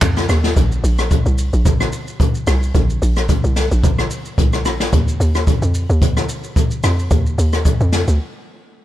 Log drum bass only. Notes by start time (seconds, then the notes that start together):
0.02 F2
0.29 D#2
0.57 A#1
0.84 A#1
1.26 C2
1.53 A#1
2.47 C2
2.75 A#1
3.02 A#1
3.44 C2
3.71 A#1
4.38 C2
4.66 A#1
4.93 D#2
5.20 D#2
5.62 F2
5.90 D#2
6.84 F2
7.11 D#2
7.38 D#2
7.81 F2
8.08 D2